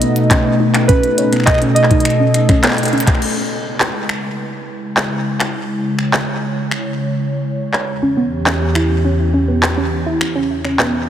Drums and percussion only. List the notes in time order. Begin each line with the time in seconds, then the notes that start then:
0.02 closed hi-hat
0.16 closed hi-hat
0.31 kick, clap, closed hi-hat
0.74 finger snap, clap, closed hi-hat
0.89 kick, closed hi-hat
1.03 closed hi-hat
1.18 closed hi-hat
1.33 finger snap, closed hi-hat
1.36 finger snap
1.40 finger snap
1.44 finger snap, kick
1.47 finger snap, clap, closed hi-hat
1.51 finger snap
1.54 finger snap
1.58 finger snap, closed hi-hat
1.76 closed hi-hat
1.84 clap
1.91 kick, closed hi-hat
2.00 closed hi-hat
2.05 finger snap, closed hi-hat
2.34 finger snap, closed hi-hat
2.49 finger snap, kick, closed hi-hat
2.63 clap, closed hi-hat
2.66 clap
2.69 clap
2.71 clap
2.73 clap
2.76 clap, closed hi-hat
2.83 closed hi-hat
2.85 closed hi-hat
2.88 closed hi-hat
2.93 closed hi-hat
2.98 finger snap, closed hi-hat
3.00 closed hi-hat
3.03 closed hi-hat
3.07 finger snap, kick, clap, closed hi-hat
3.15 finger snap
3.22 crash
3.80 clap
4.09 finger snap
4.97 clap
5.40 finger snap, clap
5.99 finger snap
6.13 clap
6.71 finger snap
7.73 clap
8.46 clap
8.75 finger snap
9.63 clap
10.21 finger snap
10.65 finger snap
10.79 clap